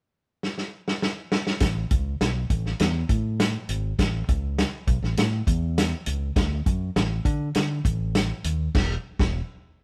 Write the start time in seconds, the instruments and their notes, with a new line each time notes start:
0.43 snare
0.58 snare
0.88 snare
1.02 snare
1.32 snare
1.47 snare
1.60 fingered electric bass A1, kick, snare, closed hi-hat
1.91 fingered electric bass C#2, kick, closed hi-hat
2.21 fingered electric bass B1, snare, closed hi-hat
2.50 fingered electric bass A1, kick, closed hi-hat
2.66 snare
2.80 fingered electric bass E2, snare, closed hi-hat
3.09 fingered electric bass A2, kick, closed hi-hat
3.40 snare, closed hi-hat
3.69 fingered electric bass G#1, closed hi-hat
3.98 fingered electric bass A1, kick, snare, closed hi-hat
4.28 fingered electric bass C#2, kick, closed hi-hat
4.59 snare, closed hi-hat
4.87 fingered electric bass B1, kick, closed hi-hat
5.02 fingered electric bass A1, snare
5.17 fingered electric bass A2, snare, closed hi-hat
5.47 fingered electric bass E2, kick, closed hi-hat
5.78 snare, closed hi-hat
6.06 fingered electric bass C#2, closed hi-hat
6.36 fingered electric bass D2, kick, snare, closed hi-hat
6.66 fingered electric bass F#2, kick, closed hi-hat
6.96 fingered electric bass A1, snare, closed hi-hat
7.25 fingered electric bass D3, kick, closed hi-hat
7.55 fingered electric bass D3, snare, closed hi-hat
7.85 fingered electric bass A1, kick, closed hi-hat
8.15 snare, closed hi-hat
8.44 fingered electric bass D#2, closed hi-hat
8.75 fingered electric bass E1, kick, snare, crash
9.19 fingered electric bass E1, kick, snare